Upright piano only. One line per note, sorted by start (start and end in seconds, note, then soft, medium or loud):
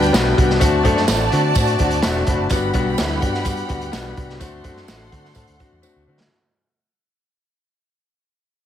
0.13 0.31 G3 loud
0.13 0.31 B3 loud
0.13 0.31 D4 loud
0.13 0.32 F#4 loud
0.36 0.54 G3 loud
0.36 0.55 B3 medium
0.36 0.55 D4 medium
0.36 0.55 F#4 loud
0.60 0.78 A3 loud
0.60 0.78 C4 loud
0.60 0.78 D4 loud
0.60 0.79 F#4 loud
0.83 1.02 A3 loud
0.83 1.02 C4 loud
0.83 1.02 D4 loud
0.83 1.03 A4 loud
1.08 1.26 A3 medium
1.08 1.26 C4 medium
1.08 1.26 D4 medium
1.08 1.26 A4 loud
1.31 1.50 A3 medium
1.31 1.50 C4 medium
1.31 1.50 D4 medium
1.31 1.50 F#4 loud
1.55 1.73 A3 medium
1.55 1.74 C4 medium
1.55 1.74 D4 medium
1.55 1.74 F#4 medium
1.79 1.97 A3 medium
1.79 1.97 C4 medium
1.79 1.97 D4 medium
1.79 1.98 F#4 loud
1.79 2.02 F#5 medium
2.02 2.21 A3 loud
2.02 2.21 C4 loud
2.02 2.21 D4 loud
2.02 2.21 F#4 loud
2.02 2.26 A5 medium
2.27 2.45 A3 medium
2.27 2.45 C4 medium
2.27 2.45 D4 medium
2.27 2.46 F#4 loud
2.27 2.50 B5 medium
2.50 2.68 G3 loud
2.50 2.69 B3 loud
2.50 2.69 D4 loud
2.50 2.69 F#4 loud
2.74 2.92 G3 loud
2.74 2.92 B3 loud
2.74 2.92 D4 loud
2.74 2.93 F#4 loud
2.97 3.16 G3 medium
2.97 3.16 B3 medium
2.97 3.16 D4 medium
2.97 3.16 E4 loud
3.20 3.39 G3 medium
3.20 3.39 B3 medium
3.20 3.40 D4 medium
3.20 3.40 F#4 medium
3.43 3.62 G3 medium
3.43 3.63 B3 medium
3.43 3.63 D4 medium
3.43 3.63 F#4 medium
3.67 3.86 G3 medium
3.67 3.87 B3 medium
3.67 3.87 D4 medium
3.67 3.87 F#4 loud
3.92 4.10 G3 loud
3.92 4.10 B3 loud
3.92 4.11 D4 loud
3.92 4.11 F#4 loud
4.15 4.34 G3 medium
4.15 4.35 B3 medium
4.15 4.35 D4 medium
4.15 4.35 F#4 loud
4.40 4.58 A3 loud
4.40 4.58 C4 loud
4.40 4.59 D4 loud
4.40 4.59 F#4 loud
4.64 4.82 A3 loud
4.64 4.82 C4 loud
4.64 4.83 D4 loud
4.64 4.83 F#4 loud
4.88 5.06 A3 medium
4.88 5.06 C4 medium
4.88 5.06 D4 medium
4.88 5.07 F#4 loud
5.12 5.30 A3 medium
5.12 5.30 C4 medium
5.12 5.30 D4 medium
5.12 5.31 F#4 medium
5.34 5.53 A3 medium
5.34 5.53 C4 medium
5.34 5.54 D4 medium
5.34 5.54 A4 medium
5.59 5.77 A3 medium
5.59 5.77 C4 medium
5.59 5.78 D4 medium
5.59 5.78 F#4 loud
5.82 6.01 A3 loud
5.82 6.01 C4 loud
5.82 6.01 D4 loud
5.82 6.02 F#4 loud
6.07 6.25 A3 medium
6.07 6.25 C4 medium
6.07 6.26 D4 medium
6.07 6.26 F#4 loud